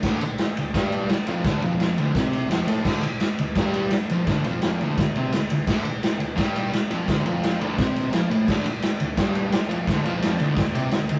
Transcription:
<<
  \new Staff \with { instrumentName = "Distorted electric guitar" } { \clef bass \time 4/4 \key d \minor \tempo 4 = 171 <d, d>8 r4 d,8 <g, g>4 r8 <f, f>8 | <d, d>8 <f, f>4 <d, d>8 <c c'>4 <f, f>8 <a, a>8 | <d, d>8 r4 d,8 <g, g>4 r8 <f, f>8 | <d, d>8 <f, f>4 <d, d>8 d,8 <c c'>8 d,8 d,8 |
<d, d>8 r4 d,8 <g, g>4 r8 <f, f>8 | <d, d>8 <f, f>4 <d, d>8 <c c'>4 <f, f>8 <a, a>8 | <d, d>8 r4 d,8 <g, g>4 r8 <f, f>8 | <d, d>8 <f, f>4 <d, d>8 d,8 <c c'>8 d,8 d,8 | }
  \new DrumStaff \with { instrumentName = "Drums" } \drummode { \time 4/4 <cymc bd sn>8 cymr8 <cymr sn>8 cymr8 <bd cymr sn>8 cymr8 <cymr sn>8 cymr8 | <bd cymr sn>8 cymr8 <cymr sn>8 cymr8 <bd cymr sn>8 cymr8 <cymr sn>8 cymr8 | <cymc bd sn>8 cymr8 <cymr sn>8 cymr8 <bd cymr sn>8 cymr8 <cymr sn>8 cymr8 | <bd cymr sn>8 cymr8 <cymr sn>8 cymr8 <bd cymr sn>8 cymr8 <cymr sn>8 cymr8 |
<cymc bd sn>8 cymr8 <cymr sn>8 cymr8 <bd cymr sn>8 cymr8 <cymr sn>8 cymr8 | <bd cymr sn>8 cymr8 <cymr sn>8 cymr8 <bd cymr sn>8 cymr8 <cymr sn>8 cymr8 | <cymc bd sn>8 cymr8 <cymr sn>8 cymr8 <bd cymr sn>8 cymr8 <cymr sn>8 cymr8 | <bd cymr sn>8 cymr8 <cymr sn>8 cymr8 <bd cymr sn>8 cymr8 <cymr sn>8 cymr8 | }
>>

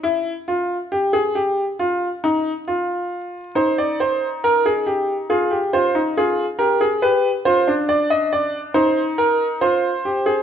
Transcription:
\new Staff \with { instrumentName = "Grand piano" } { \time 4/4 \key c \phrygian \tempo 4 = 69 << { e'8 f'8 g'16 aes'16 g'8 f'8 ees'8 f'4 | c''16 d''16 c''8 bes'16 aes'16 g'8 f'8 c''8 aes'8 bes'8 | b'8 c''8 d''16 ees''16 d''8 c''8 bes'8 c''4 | } \\ { r1 | ees'2 aes'16 g'16 f'16 ees'16 f'8 g'16 aes'16 | g'8 f'16 d'4~ d'16 ees'4 f'8 g'16 aes'16 | } >> }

